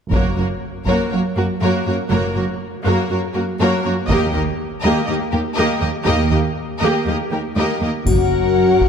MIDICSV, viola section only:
0, 0, Header, 1, 2, 480
1, 0, Start_track
1, 0, Key_signature, 6, "major"
1, 0, Tempo, 496689
1, 113, Time_signature, 4, 2, 24, 8
1, 8589, End_track
2, 0, Start_track
2, 0, Title_t, "Viola section"
2, 0, Program_c, 0, 48
2, 130, Note_on_c, 0, 66, 35
2, 131, Note_on_c, 0, 58, 37
2, 346, Note_off_c, 0, 58, 0
2, 346, Note_off_c, 0, 66, 0
2, 366, Note_on_c, 0, 66, 22
2, 369, Note_on_c, 0, 58, 25
2, 444, Note_off_c, 0, 66, 0
2, 447, Note_off_c, 0, 58, 0
2, 847, Note_on_c, 0, 58, 36
2, 847, Note_on_c, 0, 66, 37
2, 1065, Note_off_c, 0, 58, 0
2, 1065, Note_off_c, 0, 66, 0
2, 1082, Note_on_c, 0, 58, 27
2, 1084, Note_on_c, 0, 66, 27
2, 1159, Note_off_c, 0, 58, 0
2, 1162, Note_off_c, 0, 66, 0
2, 1314, Note_on_c, 0, 58, 28
2, 1316, Note_on_c, 0, 66, 27
2, 1392, Note_off_c, 0, 58, 0
2, 1393, Note_off_c, 0, 66, 0
2, 1571, Note_on_c, 0, 58, 35
2, 1573, Note_on_c, 0, 66, 38
2, 1787, Note_off_c, 0, 58, 0
2, 1788, Note_off_c, 0, 66, 0
2, 1801, Note_on_c, 0, 58, 32
2, 1803, Note_on_c, 0, 66, 30
2, 1878, Note_off_c, 0, 58, 0
2, 1880, Note_off_c, 0, 66, 0
2, 2027, Note_on_c, 0, 58, 40
2, 2027, Note_on_c, 0, 66, 37
2, 2254, Note_off_c, 0, 58, 0
2, 2254, Note_off_c, 0, 66, 0
2, 2268, Note_on_c, 0, 58, 31
2, 2268, Note_on_c, 0, 66, 27
2, 2345, Note_off_c, 0, 58, 0
2, 2345, Note_off_c, 0, 66, 0
2, 2751, Note_on_c, 0, 58, 53
2, 2751, Note_on_c, 0, 66, 52
2, 2977, Note_off_c, 0, 58, 0
2, 2977, Note_off_c, 0, 66, 0
2, 2993, Note_on_c, 0, 58, 30
2, 2997, Note_on_c, 0, 66, 35
2, 3071, Note_off_c, 0, 58, 0
2, 3074, Note_off_c, 0, 66, 0
2, 3236, Note_on_c, 0, 66, 33
2, 3238, Note_on_c, 0, 58, 35
2, 3313, Note_off_c, 0, 66, 0
2, 3315, Note_off_c, 0, 58, 0
2, 3483, Note_on_c, 0, 66, 47
2, 3485, Note_on_c, 0, 58, 47
2, 3703, Note_off_c, 0, 66, 0
2, 3704, Note_off_c, 0, 58, 0
2, 3721, Note_on_c, 0, 58, 44
2, 3726, Note_on_c, 0, 66, 39
2, 3798, Note_off_c, 0, 58, 0
2, 3803, Note_off_c, 0, 66, 0
2, 3957, Note_on_c, 0, 58, 46
2, 3961, Note_on_c, 0, 67, 54
2, 4180, Note_off_c, 0, 58, 0
2, 4183, Note_off_c, 0, 67, 0
2, 4212, Note_on_c, 0, 58, 36
2, 4215, Note_on_c, 0, 67, 35
2, 4289, Note_off_c, 0, 58, 0
2, 4292, Note_off_c, 0, 67, 0
2, 4678, Note_on_c, 0, 58, 57
2, 4681, Note_on_c, 0, 67, 53
2, 4901, Note_off_c, 0, 58, 0
2, 4902, Note_off_c, 0, 67, 0
2, 4924, Note_on_c, 0, 67, 38
2, 4926, Note_on_c, 0, 58, 41
2, 5001, Note_off_c, 0, 67, 0
2, 5004, Note_off_c, 0, 58, 0
2, 5141, Note_on_c, 0, 58, 35
2, 5146, Note_on_c, 0, 67, 36
2, 5218, Note_off_c, 0, 58, 0
2, 5223, Note_off_c, 0, 67, 0
2, 5384, Note_on_c, 0, 58, 56
2, 5384, Note_on_c, 0, 67, 51
2, 5594, Note_off_c, 0, 67, 0
2, 5597, Note_off_c, 0, 58, 0
2, 5606, Note_on_c, 0, 67, 45
2, 5608, Note_on_c, 0, 58, 40
2, 5683, Note_off_c, 0, 67, 0
2, 5686, Note_off_c, 0, 58, 0
2, 5846, Note_on_c, 0, 67, 48
2, 5852, Note_on_c, 0, 58, 46
2, 6083, Note_off_c, 0, 67, 0
2, 6087, Note_off_c, 0, 58, 0
2, 6107, Note_on_c, 0, 67, 38
2, 6108, Note_on_c, 0, 58, 34
2, 6184, Note_off_c, 0, 67, 0
2, 6185, Note_off_c, 0, 58, 0
2, 6596, Note_on_c, 0, 58, 49
2, 6597, Note_on_c, 0, 67, 57
2, 6819, Note_off_c, 0, 58, 0
2, 6820, Note_off_c, 0, 67, 0
2, 6833, Note_on_c, 0, 67, 32
2, 6837, Note_on_c, 0, 58, 32
2, 6910, Note_off_c, 0, 67, 0
2, 6914, Note_off_c, 0, 58, 0
2, 7060, Note_on_c, 0, 58, 34
2, 7065, Note_on_c, 0, 67, 29
2, 7137, Note_off_c, 0, 58, 0
2, 7142, Note_off_c, 0, 67, 0
2, 7309, Note_on_c, 0, 67, 38
2, 7315, Note_on_c, 0, 58, 39
2, 7531, Note_off_c, 0, 67, 0
2, 7533, Note_off_c, 0, 58, 0
2, 7542, Note_on_c, 0, 67, 28
2, 7545, Note_on_c, 0, 58, 29
2, 7620, Note_off_c, 0, 67, 0
2, 7622, Note_off_c, 0, 58, 0
2, 7784, Note_on_c, 0, 70, 36
2, 8589, Note_off_c, 0, 70, 0
2, 8589, End_track
0, 0, End_of_file